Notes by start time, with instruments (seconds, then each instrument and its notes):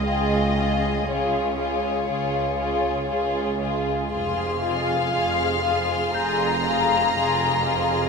0.05 cello section C#2, double bass section C#2, violin section F4 G#4 D#5, celesta G5
0.56 violin section F4 G#4
1.07 cello section C#2, double bass section C#2, violin section F4 G#4 C#5
1.58 violin section F4 G#4
2.08 double bass section C#2, cello section C#2, violin section F4 G#4
2.59 violin section F4 G#4
3.09 cello section C#2, double bass section C#2, violin section F4 G#4
3.60 violin section F4 G#4
4.10 double bass section F1, cello section F2, violin section F4 G#4 C6 F6
4.61 celesta F4 F5, violin section F4 G#4 F5
5.11 double bass section F1, cello section F2, violin section F4 G#4
5.63 violin section F4 G#4
6.14 double bass section F1, cello section F2, violin section F4 G#4 A#5, celesta G6
6.64 violin section F4 G#4
7.15 double bass section F1, cello section F2, violin section F4 G#4
7.64 violin section F4 G#4